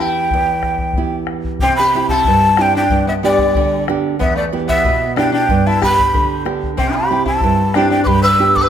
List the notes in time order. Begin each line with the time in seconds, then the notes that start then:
Already playing: E2 B3 E4 G4
0.00 E4 G5, bombo rim
0.31 E2, bombo low
0.63 bombo rim, bombo low
0.78 bombo low
0.93 B3, bombo low
0.97 E4 G4
1.27 bombo rim
1.44 bombo low
1.59 C3 C4 G5, bombo low
1.77 G4 B5
1.95 C4 E4 G4
2.09 E4 A5, bombo low
2.25 G2, bombo low
2.57 C4 D4 E4 G4, bombo rim
2.62 G5
2.75 D4 G5
2.90 G2, bombo low
3.07 B3 E5
3.23 G3 B3 D4 G4 D5
3.38 bombo low
3.55 D3, bombo low
3.88 B3 D4 G4, bombo rim
4.19 E2 B3 E5, bombo low
4.36 A3 D5
4.53 B3 E4 G4
4.68 B3 E5, bombo low
4.85 B2, bombo low
5.16 B3 D4 E4 G4 G5, bombo rim
5.32 D4 G5
5.49 G2, bombo low
5.67 E4 A5
5.81 B3 D4 G4 B5, bombo rim, bombo low
5.99 bombo low
6.14 D3, bombo low
6.45 B3 D4 G4, bombo rim
6.63 bombo low
6.77 C3 C4 G5, bombo low
6.94 G4 B5
7.11 C4 E4 G4
7.25 E4 A5, bombo low
7.41 G2, bombo low
7.74 C4 D4 E4 G4 G5, bombo rim
7.90 D4 G5
8.04 G2 G4 B4 B5 D6, bombo low
8.22 B4 E6
8.39 B3 D4 G4
8.56 A4 D6, bombo low
8.62 B4 E6